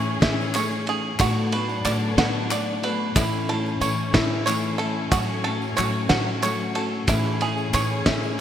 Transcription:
Already playing: upright bass A2, steel-string acoustic guitar E3 A3 C#4 G#4, string section E3 C#4 G#4, five-string banjo E4 G#4 C#5
0.20 steel-string acoustic guitar A2 E3 A3 C#4 G#4, upright bass A2, five-string banjo E5, kick, snare, clap, ride
0.41 tambourine
0.54 steel-string acoustic guitar E3 A3 C#4 G#4, five-string banjo C#5, clap, ride, tambourine
0.71 clap
0.86 steel-string acoustic guitar A3 C#4 G#4, five-string banjo G#4, clap, ride
1.19 steel-string acoustic guitar A2 D3 A3 B3 F#4, upright bass A2, string section F#3 B3 D4, five-string banjo F#4, kick, clap, ride, tambourine
1.52 steel-string acoustic guitar A3 B3 F#4, five-string banjo B4, ride
1.69 tambourine
1.84 upright bass A2, steel-string acoustic guitar D3 A3 B3 F#4, five-string banjo D5, clap, ride, tambourine
2.17 upright bass A2, steel-string acoustic guitar A2 D3 A3 B3 F#4, five-string banjo F#5, snare, ride
2.50 steel-string acoustic guitar D3 A3 B3 F#4, five-string banjo D5, clap, ride, tambourine
2.82 steel-string acoustic guitar A3 B3 F#4, five-string banjo B4, ride
3.15 steel-string acoustic guitar A2 E3 A3 C#4 E4, upright bass A2, string section E3 A3, five-string banjo E4, kick, clap, ride, tambourine
3.19 string section C#4
3.48 steel-string acoustic guitar A3 C#4 E4, five-string banjo A4, ride
3.66 tambourine
3.80 upright bass A2, steel-string acoustic guitar E3 A3 C#4 E4, five-string banjo C#5, ride, tambourine
4.13 upright bass A2, steel-string acoustic guitar A2 E3 A3 C#4 E4, five-string banjo E5, kick, snare, ride
4.45 steel-string acoustic guitar E3 A3 C#4 E4, five-string banjo C#5, clap, ride, tambourine
4.78 steel-string acoustic guitar A3 C#4 E4, five-string banjo A4, ride
5.11 steel-string acoustic guitar A2 F#3 A3 C#4 F#4, upright bass A2, string section F#3, five-string banjo F#4, kick, clap, ride, tambourine
5.44 steel-string acoustic guitar A3 C#4 F#4, five-string banjo A4, ride
5.62 tambourine
5.76 upright bass A2, steel-string acoustic guitar F#3 A3 C#4 F#4, five-string banjo C#5, clap, ride, tambourine
6.09 upright bass A2, steel-string acoustic guitar A2 F#3 A3 C#4 F#4, five-string banjo F#5, snare, ride
6.42 steel-string acoustic guitar F#3 A3 C#4 F#4, five-string banjo C#5, clap, ride, tambourine
6.75 steel-string acoustic guitar A3 C#4 F#4, five-string banjo A4, ride
7.07 steel-string acoustic guitar A2 E3 A3 C#4 G#4, upright bass A2, string section E3 C#4 G#4, five-string banjo E4, kick, clap, ride, tambourine
7.26 clap
7.41 steel-string acoustic guitar A3 C#4 G#4, five-string banjo G#4, ride, tambourine
7.57 tambourine
7.73 upright bass A2, steel-string acoustic guitar E3 A3 C#4 G#4, five-string banjo C#5, clap, ride, tambourine
8.06 upright bass A2, steel-string acoustic guitar A2 E3 A3 C#4 G#4, five-string banjo E5, kick, snare, ride
8.23 tambourine

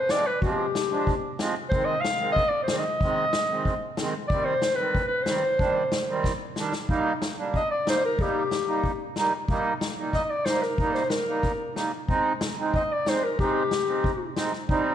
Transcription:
Already playing: clarinet C5
0.09 accordion F3 G#3 C4, clarinet D5, snare
0.27 clarinet B4
0.42 accordion F3 G#3 C4, clarinet G4, kick
0.75 snare
0.90 accordion F3 G#3 D4
1.07 kick
1.38 accordion F3 G#3 C4, snare
1.69 accordion D#3 G#3 C4, clarinet C5, kick
1.85 clarinet D#5
2.01 clarinet F5
2.05 snare
2.18 accordion D#3 G#3 C4
2.32 clarinet D#5
2.36 kick
2.48 clarinet D5
2.63 clarinet C5
2.68 accordion D#3 G#3 C4, snare
2.78 clarinet D#5
3.01 accordion D#3 G#3 C4, kick
3.33 snare
3.50 accordion D#3 G#3 C4
3.65 kick
3.97 accordion D#3 G#3 C4, snare
4.28 accordion D#3 G3 C4, clarinet D5, kick
4.45 clarinet C5
4.62 snare
4.76 accordion D#3 G3 C4, clarinet B4
4.95 kick
5.07 clarinet B4
5.23 clarinet C5, snare
5.27 accordion D#3 G3 C4
5.58 accordion D#3 G3 D4, kick
5.92 snare
6.08 accordion D#3 G3 C4
6.24 kick, snare
6.56 accordion D#3 G3 D4, snare
6.73 snare
6.88 accordion G3 A#3 D#4, kick
7.22 snare
7.37 accordion G3 A#3 D4
7.54 clarinet D#5, kick
7.71 clarinet D5
7.86 accordion G3 A#3 D#4, clarinet C5, snare
8.05 clarinet A#4
8.19 accordion G3 A#3 D#4, clarinet G4, kick
8.51 snare
8.67 accordion G3 A#3 D#4
8.84 kick
9.16 accordion G3 A#3 D#4, snare
9.48 accordion G3 A#3 D#4, kick
9.81 snare
9.98 accordion G3 A#3 D#4
10.13 clarinet D#5, kick, snare
10.23 clarinet D#5
10.30 clarinet D5
10.45 accordion G3 A#3 D#4, clarinet C5, snare
10.62 clarinet A#4, snare
10.78 accordion G3 A#3 D#4, kick
10.94 clarinet C5, snare
11.10 clarinet A#4, snare
11.28 accordion G3 A#3 D#4
11.43 kick, snare
11.75 accordion G3 A#3 D#4, snare
12.08 accordion G#3 C4 D#4, kick
12.41 snare
12.58 accordion G#3 C4 D#4
12.74 clarinet D#5, kick
12.92 clarinet D5
13.06 accordion G#3 C4 D#4, clarinet C5, snare
13.24 clarinet A#4
13.39 accordion G#3 C4 D#4, clarinet G4, kick
13.71 snare
13.86 accordion G#3 C4 D#4
14.04 kick
14.35 accordion G#3 C4 D#4, snare
14.53 snare
14.68 accordion G3 C4 D#4, kick

